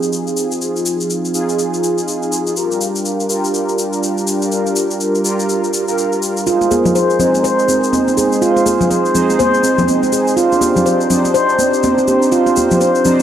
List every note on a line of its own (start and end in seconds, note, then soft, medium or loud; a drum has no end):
0.00 2.53 F3 medium
0.00 2.53 C4 medium
0.00 0.59 D#4 medium
0.00 0.59 F4 medium
0.00 0.59 G#4 loud
0.00 2.53 G#4 medium
0.00 0.60 G5 medium
0.00 shaker soft
0.13 shaker medium
0.27 shaker soft
0.37 shaker medium
0.52 shaker soft
0.61 1.32 D#4 medium
0.61 1.32 F4 medium
0.61 2.55 F4 medium
0.61 1.32 G#4 medium
0.61 shaker medium
0.76 shaker soft
0.86 shaker medium
1.01 shaker soft
1.10 shaker medium
1.25 shaker soft
1.34 2.54 D#4 medium
1.34 2.54 F4 medium
1.34 2.54 G#4 loud
1.34 shaker medium
1.49 shaker soft
1.59 shaker medium
1.74 shaker soft
1.84 shaker medium
1.98 shaker soft
2.08 shaker soft
2.23 shaker soft
2.32 shaker medium
2.47 shaker soft
2.56 6.43 G3 medium
2.56 6.43 D4 medium
2.56 3.27 F4 medium
2.56 6.43 G4 medium
2.56 3.27 G4 medium
2.56 8.38 A#4 medium
2.56 3.27 A#4 medium
2.56 shaker medium
2.71 shaker soft
2.81 shaker medium
2.96 shaker soft
3.05 shaker medium
3.20 shaker soft
3.30 4.49 F4 medium
3.30 4.49 G4 medium
3.30 4.49 A#4 loud
3.30 shaker medium
3.45 shaker soft
3.54 shaker medium
3.69 shaker soft
3.79 shaker loud
3.93 shaker soft
4.03 shaker medium
4.18 shaker soft
4.27 shaker medium
4.42 shaker soft
4.51 5.22 F4 medium
4.51 5.22 G4 medium
4.51 5.22 A#4 medium
4.51 shaker medium
4.67 shaker soft
4.76 shaker medium
4.91 shaker soft
5.01 shaker medium
5.15 shaker soft
5.25 5.72 F4 medium
5.25 5.72 G4 medium
5.25 5.72 A#4 loud
5.25 shaker medium
5.40 shaker soft
5.49 shaker medium
5.64 shaker soft
5.73 5.85 F4 medium
5.73 5.85 G4 medium
5.73 5.85 A#4 medium
5.73 shaker medium
5.88 6.44 F4 medium
5.88 6.44 G4 medium
5.88 6.44 A#4 loud
5.88 shaker soft
5.98 shaker medium
6.12 shaker soft
6.22 shaker medium
6.37 shaker soft
6.47 10.33 G#3 medium
6.47 10.33 D#4 medium
6.47 7.18 D#4 medium
6.47 6.61 F4 loud
6.47 7.18 G#4 medium
6.47 10.33 C5 medium
6.47 7.18 C5 medium
6.47 shaker medium
6.61 muted conga soft
6.61 shaker soft
6.71 6.84 G#4 medium
6.71 high conga medium
6.71 shaker medium
6.85 high conga medium
6.85 low conga loud
6.85 shaker soft
6.95 7.03 C5 medium
6.95 muted conga soft
6.95 shaker soft
7.10 shaker soft
7.19 7.33 C4 medium
7.19 8.40 D#4 medium
7.19 8.40 G#4 medium
7.19 8.40 C5 loud
7.19 low conga medium
7.19 shaker medium
7.35 muted conga soft
7.35 shaker soft
7.44 7.57 C5 medium
7.44 shaker soft
7.59 shaker soft
7.68 7.82 C4 medium
7.68 muted conga soft
7.68 high conga medium
7.68 shaker medium
7.84 shaker soft
7.93 8.07 C4 medium
7.93 high conga medium
7.93 shaker medium
8.08 muted conga soft
8.08 shaker soft
8.17 8.31 G#4 medium
8.17 high conga medium
8.17 shaker medium
8.33 shaker soft
8.42 9.13 D#4 medium
8.42 8.56 F4 loud
8.42 10.35 G#4 medium
8.42 9.13 G#4 medium
8.42 9.13 C5 medium
8.42 shaker soft
8.57 muted conga soft
8.57 shaker soft
8.66 8.79 G#4 medium
8.66 high conga medium
8.66 shaker medium
8.81 high conga medium
8.81 low conga medium
8.81 shaker soft
8.90 8.98 C5 medium
8.90 muted conga soft
8.90 shaker soft
9.05 shaker soft
9.15 9.28 C4 medium
9.15 10.35 D#4 medium
9.15 10.35 G#4 medium
9.15 10.35 C5 loud
9.15 low conga medium
9.15 shaker medium
9.30 muted conga soft
9.30 shaker soft
9.39 9.52 C5 loud
9.39 high conga loud
9.39 shaker soft
9.54 shaker soft
9.63 9.77 C4 medium
9.63 muted conga soft
9.63 shaker medium
9.78 high conga medium
9.78 low conga medium
9.78 shaker soft
9.88 10.02 C4 medium
9.88 shaker soft
10.03 muted conga medium
10.03 shaker soft
10.12 10.26 G#4 medium
10.12 shaker medium
10.27 shaker soft
10.37 13.22 C4 medium
10.37 11.08 D4 medium
10.37 11.08 D#4 medium
10.37 10.51 F4 loud
10.37 13.22 G4 medium
10.37 11.08 C5 medium
10.37 12.30 D5 medium
10.37 shaker soft
10.52 muted conga medium
10.52 shaker soft
10.61 10.74 G4 medium
10.61 high conga medium
10.61 shaker medium
10.75 high conga medium
10.75 low conga loud
10.75 shaker soft
10.86 10.94 C5 medium
10.86 muted conga soft
10.86 shaker soft
11.01 shaker soft
11.10 11.23 C4 medium
11.10 12.30 D4 medium
11.10 12.30 D#4 medium
11.10 12.30 C5 loud
11.10 low conga medium
11.10 shaker medium
11.25 muted conga soft
11.25 shaker soft
11.34 11.48 C5 loud
11.34 shaker soft
11.49 shaker soft
11.59 11.72 C4 medium
11.59 muted conga soft
11.59 high conga medium
11.59 shaker medium
11.74 shaker soft
11.83 11.97 C4 medium
11.83 high conga loud
11.83 shaker soft
11.98 muted conga soft
11.98 shaker soft
12.08 12.22 G4 medium
12.08 high conga medium
12.08 shaker medium
12.22 shaker soft
12.32 13.03 D4 medium
12.32 13.03 D#4 medium
12.32 12.46 F4 loud
12.32 13.03 C5 medium
12.32 13.22 C5 medium
12.32 shaker soft
12.46 muted conga soft
12.46 shaker soft
12.56 12.70 G4 medium
12.56 high conga medium
12.56 shaker medium
12.71 high conga medium
12.71 low conga loud
12.71 shaker soft
12.81 12.89 C5 medium
12.81 muted conga soft
12.81 shaker soft
12.95 shaker soft
13.05 13.18 C4 medium
13.05 13.22 D4 medium
13.05 13.22 D#4 medium
13.05 13.22 C5 loud
13.05 low conga medium
13.05 shaker medium